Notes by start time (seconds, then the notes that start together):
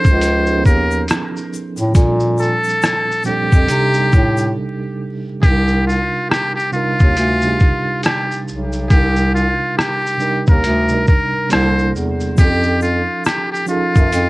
Already playing: F3 C#4 D#4 G#4 A4 C5 G#5
0.04 C#2, kick, shaker
0.06 shaker
0.21 closed hi-hat, shaker
0.46 F3 C#4 D#4 G#4, shaker
0.51 A#4
0.57 B3
0.65 D#2 A#4, kick, shaker
0.66 shaker
0.91 shaker
1.08 cross-stick, closed hi-hat, shaker
1.37 shaker
1.53 shaker
1.77 A2, shaker
1.92 A#2 F3 G3 C4 D4, kick, closed hi-hat, shaker
1.97 A4
2.20 shaker
2.38 A4, shaker
2.42 shaker
2.64 shaker
2.69 shaker
2.82 cross-stick, closed hi-hat, shaker
2.86 shaker
3.12 shaker
3.23 A#2 F3 G3 C4 G4, shaker
3.27 D4 A4
3.52 F2, kick, shaker
3.67 C3 G3 D4 D#4, closed hi-hat, shaker
3.72 A4
3.92 C3 G3 D4 D#4, shaker
3.97 G4
4.12 A2, kick, shaker
4.37 shaker
5.41 C2 C3 G3 D4 D#4 G4, kick, closed hi-hat, shaker
5.45 A#4
5.68 shaker
5.87 F4, shaker
6.30 G4, cross-stick, closed hi-hat, shaker
6.56 G4, shaker
6.72 C3 G3 D4 D#4 F4, shaker
6.76 A#4
6.99 D#2, kick, shaker
7.17 D2, closed hi-hat, shaker
7.41 C3 G3 D4, shaker
7.45 D#4 G4
7.59 kick, shaker
8.03 G4, cross-stick, closed hi-hat, shaker
8.31 shaker
8.48 B1, shaker
8.72 shaker
8.90 C2 C3 G3 D4 D#4 G4, kick, closed hi-hat, shaker
8.94 A#4
9.16 shaker
9.35 F4, shaker
9.77 G4, cross-stick, closed hi-hat, shaker
10.06 shaker
10.17 C3 G3 D4 D#4, shaker
10.22 A#4
10.47 D#2 A#4, kick, shaker
10.64 D2, closed hi-hat, shaker
10.88 C3 G3 D4, shaker
10.93 D#4 A#4
11.07 A#4, kick, shaker
11.49 C2 C3 G3 A#3 D4 E4 C5, closed hi-hat, shaker
11.53 G4, cross-stick
11.59 A4
11.79 shaker
11.95 E2, shaker
12.20 shaker
12.35 F2 F3 C#4 D#4 F4 G4, kick, closed hi-hat, shaker
12.40 A4
12.63 shaker
12.81 F4, shaker
12.84 shaker
13.25 G4, cross-stick, closed hi-hat, shaker
13.28 shaker
13.52 G4, shaker
13.66 F3 C#4 D#4 F4 G#4, shaker
13.71 A4
13.95 F#2, kick, shaker
14.13 F2, closed hi-hat, shaker